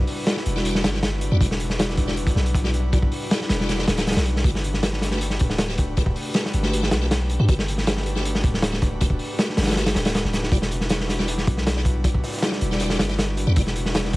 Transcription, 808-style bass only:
0, 0, Header, 1, 2, 480
1, 0, Start_track
1, 0, Key_signature, 1, "minor"
1, 0, Tempo, 379747
1, 1784, Time_signature, 4, 2, 24, 8
1, 17906, End_track
2, 0, Start_track
2, 0, Title_t, "808-style bass"
2, 0, Program_c, 0, 38
2, 582, Note_on_c, 0, 28, 91
2, 1062, Note_on_c, 0, 31, 100
2, 1081, Note_off_c, 0, 28, 0
2, 1647, Note_off_c, 0, 31, 0
2, 1665, Note_on_c, 0, 40, 107
2, 1771, Note_off_c, 0, 40, 0
2, 1777, Note_on_c, 0, 28, 96
2, 2962, Note_off_c, 0, 28, 0
2, 2980, Note_on_c, 0, 35, 102
2, 3923, Note_off_c, 0, 35, 0
2, 4421, Note_on_c, 0, 28, 91
2, 4884, Note_off_c, 0, 28, 0
2, 4903, Note_on_c, 0, 26, 97
2, 5248, Note_off_c, 0, 26, 0
2, 5267, Note_on_c, 0, 35, 95
2, 5605, Note_off_c, 0, 35, 0
2, 5616, Note_on_c, 0, 31, 98
2, 6801, Note_off_c, 0, 31, 0
2, 6836, Note_on_c, 0, 26, 109
2, 7771, Note_off_c, 0, 26, 0
2, 8264, Note_on_c, 0, 31, 94
2, 8744, Note_on_c, 0, 35, 103
2, 8763, Note_off_c, 0, 31, 0
2, 9328, Note_off_c, 0, 35, 0
2, 9349, Note_on_c, 0, 43, 109
2, 9452, Note_off_c, 0, 43, 0
2, 9463, Note_on_c, 0, 31, 95
2, 10645, Note_off_c, 0, 31, 0
2, 10666, Note_on_c, 0, 26, 110
2, 11606, Note_off_c, 0, 26, 0
2, 12104, Note_on_c, 0, 31, 94
2, 12565, Note_off_c, 0, 31, 0
2, 12585, Note_on_c, 0, 26, 95
2, 12928, Note_off_c, 0, 26, 0
2, 12946, Note_on_c, 0, 26, 95
2, 13284, Note_off_c, 0, 26, 0
2, 13294, Note_on_c, 0, 28, 98
2, 14480, Note_off_c, 0, 28, 0
2, 14503, Note_on_c, 0, 35, 108
2, 15445, Note_off_c, 0, 35, 0
2, 15944, Note_on_c, 0, 28, 94
2, 16424, Note_on_c, 0, 31, 101
2, 16443, Note_off_c, 0, 28, 0
2, 17008, Note_off_c, 0, 31, 0
2, 17029, Note_on_c, 0, 40, 107
2, 17132, Note_off_c, 0, 40, 0
2, 17147, Note_on_c, 0, 28, 100
2, 17906, Note_off_c, 0, 28, 0
2, 17906, End_track
0, 0, End_of_file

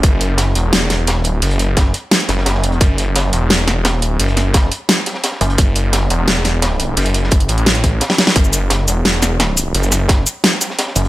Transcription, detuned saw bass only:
0, 0, Header, 1, 2, 480
1, 0, Start_track
1, 0, Tempo, 346821
1, 47, Time_signature, 4, 2, 24, 8
1, 15342, End_track
2, 0, Start_track
2, 0, Title_t, "Detuned saw bass"
2, 0, Program_c, 0, 39
2, 47, Note_on_c, 0, 30, 99
2, 748, Note_off_c, 0, 30, 0
2, 766, Note_on_c, 0, 28, 99
2, 1597, Note_off_c, 0, 28, 0
2, 1597, Note_on_c, 0, 27, 99
2, 1948, Note_off_c, 0, 27, 0
2, 1967, Note_on_c, 0, 30, 99
2, 2668, Note_off_c, 0, 30, 0
2, 3167, Note_on_c, 0, 30, 97
2, 3868, Note_off_c, 0, 30, 0
2, 3887, Note_on_c, 0, 30, 97
2, 4588, Note_off_c, 0, 30, 0
2, 4608, Note_on_c, 0, 28, 95
2, 5438, Note_off_c, 0, 28, 0
2, 5438, Note_on_c, 0, 27, 95
2, 5788, Note_off_c, 0, 27, 0
2, 5807, Note_on_c, 0, 30, 97
2, 6508, Note_off_c, 0, 30, 0
2, 7487, Note_on_c, 0, 30, 99
2, 7708, Note_off_c, 0, 30, 0
2, 7727, Note_on_c, 0, 30, 98
2, 8428, Note_off_c, 0, 30, 0
2, 8447, Note_on_c, 0, 28, 101
2, 9628, Note_off_c, 0, 28, 0
2, 9647, Note_on_c, 0, 30, 97
2, 10348, Note_off_c, 0, 30, 0
2, 10368, Note_on_c, 0, 33, 98
2, 11087, Note_off_c, 0, 33, 0
2, 11567, Note_on_c, 0, 30, 95
2, 12268, Note_off_c, 0, 30, 0
2, 12287, Note_on_c, 0, 28, 97
2, 13468, Note_off_c, 0, 28, 0
2, 13487, Note_on_c, 0, 30, 96
2, 14188, Note_off_c, 0, 30, 0
2, 15167, Note_on_c, 0, 30, 101
2, 15342, Note_off_c, 0, 30, 0
2, 15342, End_track
0, 0, End_of_file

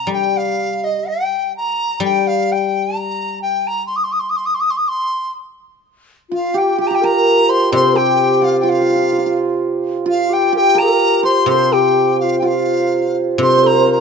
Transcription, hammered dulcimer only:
0, 0, Header, 1, 2, 480
1, 0, Start_track
1, 0, Tempo, 944882
1, 51, Time_signature, 2, 2, 24, 8
1, 1971, Tempo, 966184
1, 3411, Tempo, 938967
1, 5811, Tempo, 963082
1, 7072, End_track
2, 0, Start_track
2, 0, Title_t, "Hammered dulcimer"
2, 0, Program_c, 0, 15
2, 3181, Note_on_c, 0, 65, 53
2, 3293, Note_on_c, 0, 67, 64
2, 3411, Note_off_c, 0, 67, 0
2, 3414, Note_on_c, 0, 67, 65
2, 3473, Note_off_c, 0, 67, 0
2, 3475, Note_on_c, 0, 67, 63
2, 3542, Note_on_c, 0, 70, 69
2, 3893, Note_on_c, 0, 72, 79
2, 4009, Note_off_c, 0, 67, 0
2, 4011, Note_on_c, 0, 67, 60
2, 4246, Note_off_c, 0, 65, 0
2, 4248, Note_on_c, 0, 65, 68
2, 4357, Note_off_c, 0, 65, 0
2, 4359, Note_on_c, 0, 65, 61
2, 4403, Note_off_c, 0, 65, 0
2, 4405, Note_on_c, 0, 65, 41
2, 4446, Note_off_c, 0, 65, 0
2, 4448, Note_on_c, 0, 65, 42
2, 4493, Note_off_c, 0, 65, 0
2, 4495, Note_on_c, 0, 65, 34
2, 4523, Note_off_c, 0, 65, 0
2, 4525, Note_on_c, 0, 65, 40
2, 4557, Note_off_c, 0, 65, 0
2, 4559, Note_on_c, 0, 65, 35
2, 4606, Note_off_c, 0, 65, 0
2, 4608, Note_on_c, 0, 65, 41
2, 4639, Note_off_c, 0, 65, 0
2, 4641, Note_on_c, 0, 65, 39
2, 4678, Note_off_c, 0, 65, 0
2, 4680, Note_on_c, 0, 65, 44
2, 4990, Note_off_c, 0, 70, 0
2, 5085, Note_off_c, 0, 65, 0
2, 5087, Note_on_c, 0, 65, 67
2, 5242, Note_off_c, 0, 72, 0
2, 5325, Note_off_c, 0, 67, 0
2, 5327, Note_on_c, 0, 67, 67
2, 5440, Note_on_c, 0, 70, 70
2, 5687, Note_on_c, 0, 72, 65
2, 5810, Note_off_c, 0, 72, 0
2, 5812, Note_on_c, 0, 72, 82
2, 6283, Note_off_c, 0, 65, 0
2, 6285, Note_on_c, 0, 65, 63
2, 6784, Note_off_c, 0, 72, 0
2, 6786, Note_on_c, 0, 72, 66
2, 6820, Note_off_c, 0, 72, 0
2, 6822, Note_on_c, 0, 72, 51
2, 6857, Note_off_c, 0, 72, 0
2, 6859, Note_on_c, 0, 72, 52
2, 6861, Note_off_c, 0, 70, 0
2, 6899, Note_off_c, 0, 72, 0
2, 6901, Note_on_c, 0, 72, 46
2, 6902, Note_off_c, 0, 67, 0
2, 6938, Note_off_c, 0, 72, 0
2, 6940, Note_on_c, 0, 72, 48
2, 6970, Note_off_c, 0, 72, 0
2, 6972, Note_on_c, 0, 72, 42
2, 6999, Note_off_c, 0, 72, 0
2, 7001, Note_on_c, 0, 72, 47
2, 7049, Note_off_c, 0, 72, 0
2, 7051, Note_on_c, 0, 72, 42
2, 7072, Note_off_c, 0, 65, 0
2, 7072, Note_off_c, 0, 72, 0
2, 7072, End_track
0, 0, End_of_file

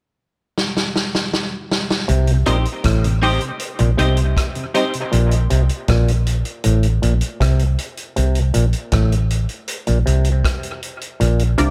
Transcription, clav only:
0, 0, Header, 1, 2, 480
1, 0, Start_track
1, 0, Tempo, 759686
1, 1316, Time_signature, 4, 2, 24, 8
1, 7395, End_track
2, 0, Start_track
2, 0, Title_t, "Clav"
2, 0, Program_c, 0, 7
2, 1315, Note_on_c, 0, 48, 80
2, 1459, Note_off_c, 0, 48, 0
2, 1556, Note_on_c, 0, 46, 81
2, 1629, Note_off_c, 0, 46, 0
2, 1793, Note_on_c, 0, 45, 73
2, 1938, Note_off_c, 0, 45, 0
2, 2395, Note_on_c, 0, 46, 66
2, 2467, Note_off_c, 0, 46, 0
2, 2511, Note_on_c, 0, 48, 77
2, 2657, Note_off_c, 0, 48, 0
2, 3233, Note_on_c, 0, 46, 86
2, 3378, Note_off_c, 0, 46, 0
2, 3477, Note_on_c, 0, 48, 79
2, 3549, Note_off_c, 0, 48, 0
2, 3718, Note_on_c, 0, 46, 80
2, 3861, Note_off_c, 0, 46, 0
2, 4196, Note_on_c, 0, 45, 72
2, 4340, Note_off_c, 0, 45, 0
2, 4437, Note_on_c, 0, 46, 67
2, 4509, Note_off_c, 0, 46, 0
2, 4678, Note_on_c, 0, 48, 69
2, 4821, Note_off_c, 0, 48, 0
2, 5157, Note_on_c, 0, 48, 76
2, 5301, Note_off_c, 0, 48, 0
2, 5395, Note_on_c, 0, 46, 76
2, 5468, Note_off_c, 0, 46, 0
2, 5636, Note_on_c, 0, 45, 74
2, 5780, Note_off_c, 0, 45, 0
2, 6237, Note_on_c, 0, 46, 68
2, 6309, Note_off_c, 0, 46, 0
2, 6355, Note_on_c, 0, 48, 75
2, 6499, Note_off_c, 0, 48, 0
2, 7076, Note_on_c, 0, 46, 80
2, 7220, Note_off_c, 0, 46, 0
2, 7316, Note_on_c, 0, 48, 74
2, 7388, Note_off_c, 0, 48, 0
2, 7395, End_track
0, 0, End_of_file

